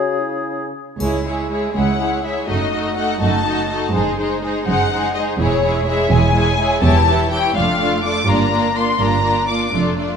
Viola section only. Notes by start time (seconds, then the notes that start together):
1.01 G#3 E4
1.26 G#3 E4
1.51 G#3 E4
1.75 G#3 E4
1.99 G#3 E4
2.24 G#3 E4
2.49 A3 D#4
2.73 A3 D#4
2.97 A3 D#4
3.21 A3 D#4
3.45 A3 D#4
3.71 A3 D#4
3.94 G#3 D#4
4.18 G#3 D#4
4.44 G#3 D#4
4.67 G#3 D#4
4.91 G#3 D#4
5.17 G#3 D#4
5.40 G#3 E4
5.64 G#3 E4
5.88 G#3 E4
6.12 G#3 E4
6.35 G#3 E4
6.60 G#3 E4
6.83 E3 E4
7.08 E3 E4
7.32 E3 E4
7.57 A3 D4
7.80 A3 D4
8.05 A3 D4
8.28 A#3 D4
8.52 A#3 D4
8.76 A#3 D4
9.00 A#3 D4
9.24 A#3 D4
9.49 A#3 D4
9.74 A3 D4
10.00 A3 D4